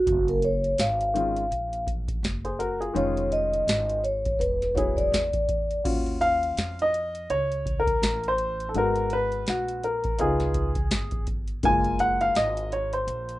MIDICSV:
0, 0, Header, 1, 5, 480
1, 0, Start_track
1, 0, Tempo, 722892
1, 44, Time_signature, 4, 2, 24, 8
1, 8893, End_track
2, 0, Start_track
2, 0, Title_t, "Vibraphone"
2, 0, Program_c, 0, 11
2, 0, Note_on_c, 0, 66, 88
2, 163, Note_off_c, 0, 66, 0
2, 194, Note_on_c, 0, 70, 80
2, 292, Note_off_c, 0, 70, 0
2, 297, Note_on_c, 0, 73, 100
2, 532, Note_on_c, 0, 77, 96
2, 538, Note_off_c, 0, 73, 0
2, 1222, Note_off_c, 0, 77, 0
2, 1965, Note_on_c, 0, 73, 94
2, 2188, Note_off_c, 0, 73, 0
2, 2208, Note_on_c, 0, 75, 111
2, 2659, Note_off_c, 0, 75, 0
2, 2681, Note_on_c, 0, 73, 92
2, 2916, Note_on_c, 0, 71, 86
2, 2930, Note_off_c, 0, 73, 0
2, 3143, Note_off_c, 0, 71, 0
2, 3156, Note_on_c, 0, 73, 96
2, 3291, Note_off_c, 0, 73, 0
2, 3299, Note_on_c, 0, 74, 99
2, 3855, Note_off_c, 0, 74, 0
2, 8893, End_track
3, 0, Start_track
3, 0, Title_t, "Upright piano"
3, 0, Program_c, 1, 0
3, 756, Note_on_c, 1, 51, 68
3, 763, Note_on_c, 1, 56, 61
3, 767, Note_on_c, 1, 61, 59
3, 775, Note_on_c, 1, 65, 73
3, 940, Note_off_c, 1, 51, 0
3, 944, Note_off_c, 1, 56, 0
3, 946, Note_off_c, 1, 61, 0
3, 950, Note_off_c, 1, 65, 0
3, 1624, Note_on_c, 1, 72, 68
3, 1628, Note_on_c, 1, 68, 58
3, 1719, Note_off_c, 1, 72, 0
3, 1721, Note_off_c, 1, 68, 0
3, 1721, Note_on_c, 1, 70, 81
3, 1724, Note_on_c, 1, 66, 68
3, 1856, Note_off_c, 1, 70, 0
3, 1858, Note_off_c, 1, 66, 0
3, 1863, Note_on_c, 1, 68, 71
3, 1866, Note_on_c, 1, 65, 53
3, 1949, Note_on_c, 1, 51, 77
3, 1956, Note_on_c, 1, 56, 71
3, 1962, Note_off_c, 1, 65, 0
3, 1963, Note_on_c, 1, 61, 67
3, 1972, Note_on_c, 1, 65, 82
3, 2092, Note_off_c, 1, 68, 0
3, 2637, Note_off_c, 1, 51, 0
3, 2640, Note_off_c, 1, 56, 0
3, 2644, Note_off_c, 1, 61, 0
3, 2649, Note_off_c, 1, 65, 0
3, 3151, Note_on_c, 1, 54, 72
3, 3157, Note_on_c, 1, 59, 67
3, 3168, Note_on_c, 1, 64, 70
3, 3173, Note_on_c, 1, 68, 71
3, 3454, Note_off_c, 1, 54, 0
3, 3457, Note_off_c, 1, 59, 0
3, 3462, Note_off_c, 1, 64, 0
3, 3465, Note_off_c, 1, 68, 0
3, 3879, Note_on_c, 1, 66, 50
3, 3883, Note_on_c, 1, 61, 51
3, 3886, Note_on_c, 1, 65, 58
3, 4124, Note_on_c, 1, 77, 113
3, 4497, Note_off_c, 1, 77, 0
3, 4527, Note_on_c, 1, 75, 94
3, 4575, Note_off_c, 1, 66, 0
3, 4577, Note_off_c, 1, 61, 0
3, 4579, Note_off_c, 1, 65, 0
3, 4849, Note_on_c, 1, 73, 100
3, 4855, Note_off_c, 1, 75, 0
3, 5176, Note_off_c, 1, 73, 0
3, 5176, Note_on_c, 1, 70, 91
3, 5498, Note_on_c, 1, 72, 97
3, 5500, Note_off_c, 1, 70, 0
3, 5754, Note_off_c, 1, 72, 0
3, 5770, Note_on_c, 1, 69, 66
3, 5806, Note_off_c, 1, 69, 0
3, 5811, Note_on_c, 1, 56, 55
3, 5818, Note_on_c, 1, 59, 53
3, 5819, Note_on_c, 1, 66, 68
3, 5829, Note_on_c, 1, 70, 87
3, 6062, Note_on_c, 1, 71, 104
3, 6063, Note_off_c, 1, 70, 0
3, 6295, Note_off_c, 1, 66, 0
3, 6300, Note_off_c, 1, 71, 0
3, 6305, Note_on_c, 1, 66, 81
3, 6518, Note_off_c, 1, 66, 0
3, 6535, Note_on_c, 1, 70, 75
3, 6741, Note_off_c, 1, 56, 0
3, 6745, Note_off_c, 1, 59, 0
3, 6762, Note_on_c, 1, 59, 59
3, 6766, Note_on_c, 1, 63, 49
3, 6772, Note_on_c, 1, 65, 67
3, 6777, Note_off_c, 1, 70, 0
3, 6779, Note_on_c, 1, 68, 79
3, 7098, Note_off_c, 1, 59, 0
3, 7100, Note_off_c, 1, 63, 0
3, 7103, Note_off_c, 1, 65, 0
3, 7465, Note_off_c, 1, 68, 0
3, 7723, Note_on_c, 1, 56, 54
3, 7728, Note_on_c, 1, 58, 51
3, 7732, Note_on_c, 1, 65, 62
3, 7738, Note_on_c, 1, 80, 115
3, 7955, Note_off_c, 1, 80, 0
3, 7969, Note_on_c, 1, 78, 103
3, 8108, Note_on_c, 1, 77, 100
3, 8111, Note_off_c, 1, 78, 0
3, 8209, Note_off_c, 1, 77, 0
3, 8210, Note_on_c, 1, 75, 95
3, 8450, Note_on_c, 1, 73, 83
3, 8454, Note_off_c, 1, 75, 0
3, 8588, Note_on_c, 1, 72, 83
3, 8592, Note_off_c, 1, 73, 0
3, 8893, Note_off_c, 1, 56, 0
3, 8893, Note_off_c, 1, 58, 0
3, 8893, Note_off_c, 1, 65, 0
3, 8893, Note_off_c, 1, 72, 0
3, 8893, End_track
4, 0, Start_track
4, 0, Title_t, "Upright bass"
4, 0, Program_c, 2, 32
4, 47, Note_on_c, 2, 30, 112
4, 502, Note_off_c, 2, 30, 0
4, 525, Note_on_c, 2, 32, 102
4, 981, Note_off_c, 2, 32, 0
4, 1002, Note_on_c, 2, 34, 88
4, 1459, Note_off_c, 2, 34, 0
4, 1480, Note_on_c, 2, 30, 94
4, 1938, Note_off_c, 2, 30, 0
4, 1959, Note_on_c, 2, 29, 97
4, 2417, Note_off_c, 2, 29, 0
4, 2439, Note_on_c, 2, 32, 100
4, 2897, Note_off_c, 2, 32, 0
4, 2921, Note_on_c, 2, 28, 101
4, 3378, Note_off_c, 2, 28, 0
4, 3400, Note_on_c, 2, 40, 101
4, 3858, Note_off_c, 2, 40, 0
4, 3885, Note_on_c, 2, 39, 112
4, 4341, Note_off_c, 2, 39, 0
4, 4365, Note_on_c, 2, 41, 87
4, 4821, Note_off_c, 2, 41, 0
4, 4846, Note_on_c, 2, 37, 96
4, 5302, Note_off_c, 2, 37, 0
4, 5325, Note_on_c, 2, 33, 104
4, 5781, Note_off_c, 2, 33, 0
4, 5806, Note_on_c, 2, 32, 98
4, 6261, Note_off_c, 2, 32, 0
4, 6292, Note_on_c, 2, 34, 91
4, 6744, Note_off_c, 2, 34, 0
4, 6768, Note_on_c, 2, 37, 113
4, 7222, Note_off_c, 2, 37, 0
4, 7244, Note_on_c, 2, 31, 96
4, 7700, Note_off_c, 2, 31, 0
4, 7726, Note_on_c, 2, 30, 98
4, 8181, Note_off_c, 2, 30, 0
4, 8201, Note_on_c, 2, 32, 89
4, 8659, Note_off_c, 2, 32, 0
4, 8679, Note_on_c, 2, 34, 100
4, 8893, Note_off_c, 2, 34, 0
4, 8893, End_track
5, 0, Start_track
5, 0, Title_t, "Drums"
5, 44, Note_on_c, 9, 36, 121
5, 47, Note_on_c, 9, 42, 81
5, 110, Note_off_c, 9, 36, 0
5, 113, Note_off_c, 9, 42, 0
5, 187, Note_on_c, 9, 42, 45
5, 253, Note_off_c, 9, 42, 0
5, 281, Note_on_c, 9, 42, 67
5, 348, Note_off_c, 9, 42, 0
5, 426, Note_on_c, 9, 42, 50
5, 493, Note_off_c, 9, 42, 0
5, 520, Note_on_c, 9, 42, 99
5, 528, Note_on_c, 9, 38, 114
5, 587, Note_off_c, 9, 42, 0
5, 594, Note_off_c, 9, 38, 0
5, 669, Note_on_c, 9, 42, 58
5, 735, Note_off_c, 9, 42, 0
5, 768, Note_on_c, 9, 42, 73
5, 834, Note_off_c, 9, 42, 0
5, 906, Note_on_c, 9, 42, 54
5, 973, Note_off_c, 9, 42, 0
5, 1009, Note_on_c, 9, 42, 87
5, 1075, Note_off_c, 9, 42, 0
5, 1148, Note_on_c, 9, 42, 55
5, 1215, Note_off_c, 9, 42, 0
5, 1241, Note_on_c, 9, 36, 94
5, 1247, Note_on_c, 9, 42, 85
5, 1308, Note_off_c, 9, 36, 0
5, 1313, Note_off_c, 9, 42, 0
5, 1382, Note_on_c, 9, 36, 98
5, 1384, Note_on_c, 9, 42, 61
5, 1449, Note_off_c, 9, 36, 0
5, 1451, Note_off_c, 9, 42, 0
5, 1489, Note_on_c, 9, 42, 93
5, 1492, Note_on_c, 9, 38, 114
5, 1555, Note_off_c, 9, 42, 0
5, 1559, Note_off_c, 9, 38, 0
5, 1625, Note_on_c, 9, 42, 47
5, 1692, Note_off_c, 9, 42, 0
5, 1726, Note_on_c, 9, 42, 75
5, 1792, Note_off_c, 9, 42, 0
5, 1871, Note_on_c, 9, 42, 50
5, 1937, Note_off_c, 9, 42, 0
5, 1966, Note_on_c, 9, 42, 93
5, 2033, Note_off_c, 9, 42, 0
5, 2106, Note_on_c, 9, 42, 44
5, 2173, Note_off_c, 9, 42, 0
5, 2204, Note_on_c, 9, 42, 71
5, 2270, Note_off_c, 9, 42, 0
5, 2347, Note_on_c, 9, 42, 52
5, 2414, Note_off_c, 9, 42, 0
5, 2443, Note_on_c, 9, 42, 112
5, 2451, Note_on_c, 9, 38, 115
5, 2510, Note_off_c, 9, 42, 0
5, 2517, Note_off_c, 9, 38, 0
5, 2586, Note_on_c, 9, 42, 55
5, 2653, Note_off_c, 9, 42, 0
5, 2686, Note_on_c, 9, 42, 78
5, 2752, Note_off_c, 9, 42, 0
5, 2825, Note_on_c, 9, 42, 58
5, 2828, Note_on_c, 9, 36, 103
5, 2891, Note_off_c, 9, 42, 0
5, 2894, Note_off_c, 9, 36, 0
5, 2929, Note_on_c, 9, 42, 85
5, 2995, Note_off_c, 9, 42, 0
5, 3068, Note_on_c, 9, 42, 51
5, 3070, Note_on_c, 9, 38, 31
5, 3135, Note_off_c, 9, 42, 0
5, 3136, Note_off_c, 9, 38, 0
5, 3163, Note_on_c, 9, 36, 99
5, 3170, Note_on_c, 9, 42, 88
5, 3229, Note_off_c, 9, 36, 0
5, 3237, Note_off_c, 9, 42, 0
5, 3303, Note_on_c, 9, 36, 88
5, 3307, Note_on_c, 9, 42, 58
5, 3370, Note_off_c, 9, 36, 0
5, 3373, Note_off_c, 9, 42, 0
5, 3410, Note_on_c, 9, 42, 85
5, 3414, Note_on_c, 9, 38, 110
5, 3477, Note_off_c, 9, 42, 0
5, 3480, Note_off_c, 9, 38, 0
5, 3542, Note_on_c, 9, 36, 97
5, 3542, Note_on_c, 9, 42, 59
5, 3608, Note_off_c, 9, 42, 0
5, 3609, Note_off_c, 9, 36, 0
5, 3643, Note_on_c, 9, 42, 79
5, 3645, Note_on_c, 9, 36, 89
5, 3710, Note_off_c, 9, 42, 0
5, 3711, Note_off_c, 9, 36, 0
5, 3789, Note_on_c, 9, 42, 49
5, 3856, Note_off_c, 9, 42, 0
5, 3884, Note_on_c, 9, 36, 122
5, 3887, Note_on_c, 9, 42, 86
5, 3887, Note_on_c, 9, 49, 100
5, 3951, Note_off_c, 9, 36, 0
5, 3953, Note_off_c, 9, 42, 0
5, 3953, Note_off_c, 9, 49, 0
5, 4027, Note_on_c, 9, 42, 50
5, 4093, Note_off_c, 9, 42, 0
5, 4127, Note_on_c, 9, 42, 70
5, 4193, Note_off_c, 9, 42, 0
5, 4269, Note_on_c, 9, 42, 55
5, 4336, Note_off_c, 9, 42, 0
5, 4365, Note_on_c, 9, 42, 98
5, 4373, Note_on_c, 9, 38, 123
5, 4431, Note_off_c, 9, 42, 0
5, 4439, Note_off_c, 9, 38, 0
5, 4510, Note_on_c, 9, 42, 55
5, 4576, Note_off_c, 9, 42, 0
5, 4609, Note_on_c, 9, 42, 70
5, 4675, Note_off_c, 9, 42, 0
5, 4747, Note_on_c, 9, 42, 55
5, 4813, Note_off_c, 9, 42, 0
5, 4846, Note_on_c, 9, 42, 86
5, 4913, Note_off_c, 9, 42, 0
5, 4991, Note_on_c, 9, 42, 52
5, 5057, Note_off_c, 9, 42, 0
5, 5084, Note_on_c, 9, 36, 87
5, 5091, Note_on_c, 9, 42, 83
5, 5151, Note_off_c, 9, 36, 0
5, 5157, Note_off_c, 9, 42, 0
5, 5225, Note_on_c, 9, 36, 91
5, 5229, Note_on_c, 9, 42, 59
5, 5291, Note_off_c, 9, 36, 0
5, 5295, Note_off_c, 9, 42, 0
5, 5331, Note_on_c, 9, 42, 87
5, 5334, Note_on_c, 9, 38, 114
5, 5397, Note_off_c, 9, 42, 0
5, 5400, Note_off_c, 9, 38, 0
5, 5469, Note_on_c, 9, 42, 47
5, 5535, Note_off_c, 9, 42, 0
5, 5566, Note_on_c, 9, 42, 69
5, 5633, Note_off_c, 9, 42, 0
5, 5712, Note_on_c, 9, 42, 52
5, 5778, Note_off_c, 9, 42, 0
5, 5807, Note_on_c, 9, 42, 87
5, 5873, Note_off_c, 9, 42, 0
5, 5946, Note_on_c, 9, 42, 54
5, 6013, Note_off_c, 9, 42, 0
5, 6042, Note_on_c, 9, 42, 72
5, 6109, Note_off_c, 9, 42, 0
5, 6188, Note_on_c, 9, 42, 47
5, 6254, Note_off_c, 9, 42, 0
5, 6285, Note_on_c, 9, 42, 93
5, 6293, Note_on_c, 9, 38, 124
5, 6352, Note_off_c, 9, 42, 0
5, 6359, Note_off_c, 9, 38, 0
5, 6430, Note_on_c, 9, 42, 59
5, 6497, Note_off_c, 9, 42, 0
5, 6530, Note_on_c, 9, 42, 62
5, 6597, Note_off_c, 9, 42, 0
5, 6665, Note_on_c, 9, 42, 54
5, 6671, Note_on_c, 9, 36, 103
5, 6731, Note_off_c, 9, 42, 0
5, 6737, Note_off_c, 9, 36, 0
5, 6764, Note_on_c, 9, 42, 87
5, 6830, Note_off_c, 9, 42, 0
5, 6904, Note_on_c, 9, 42, 51
5, 6906, Note_on_c, 9, 38, 35
5, 6971, Note_off_c, 9, 42, 0
5, 6973, Note_off_c, 9, 38, 0
5, 7001, Note_on_c, 9, 42, 91
5, 7002, Note_on_c, 9, 36, 86
5, 7067, Note_off_c, 9, 42, 0
5, 7069, Note_off_c, 9, 36, 0
5, 7140, Note_on_c, 9, 42, 61
5, 7143, Note_on_c, 9, 36, 101
5, 7206, Note_off_c, 9, 42, 0
5, 7209, Note_off_c, 9, 36, 0
5, 7243, Note_on_c, 9, 42, 90
5, 7246, Note_on_c, 9, 38, 114
5, 7310, Note_off_c, 9, 42, 0
5, 7313, Note_off_c, 9, 38, 0
5, 7378, Note_on_c, 9, 42, 54
5, 7383, Note_on_c, 9, 36, 91
5, 7444, Note_off_c, 9, 42, 0
5, 7449, Note_off_c, 9, 36, 0
5, 7482, Note_on_c, 9, 42, 79
5, 7485, Note_on_c, 9, 36, 89
5, 7548, Note_off_c, 9, 42, 0
5, 7552, Note_off_c, 9, 36, 0
5, 7620, Note_on_c, 9, 42, 49
5, 7686, Note_off_c, 9, 42, 0
5, 7723, Note_on_c, 9, 42, 90
5, 7724, Note_on_c, 9, 36, 113
5, 7790, Note_off_c, 9, 42, 0
5, 7791, Note_off_c, 9, 36, 0
5, 7865, Note_on_c, 9, 42, 52
5, 7931, Note_off_c, 9, 42, 0
5, 7963, Note_on_c, 9, 42, 69
5, 8029, Note_off_c, 9, 42, 0
5, 8106, Note_on_c, 9, 42, 53
5, 8172, Note_off_c, 9, 42, 0
5, 8202, Note_on_c, 9, 42, 106
5, 8210, Note_on_c, 9, 38, 121
5, 8269, Note_off_c, 9, 42, 0
5, 8276, Note_off_c, 9, 38, 0
5, 8347, Note_on_c, 9, 42, 61
5, 8413, Note_off_c, 9, 42, 0
5, 8447, Note_on_c, 9, 42, 73
5, 8513, Note_off_c, 9, 42, 0
5, 8584, Note_on_c, 9, 42, 58
5, 8650, Note_off_c, 9, 42, 0
5, 8684, Note_on_c, 9, 42, 85
5, 8750, Note_off_c, 9, 42, 0
5, 8823, Note_on_c, 9, 42, 56
5, 8889, Note_off_c, 9, 42, 0
5, 8893, End_track
0, 0, End_of_file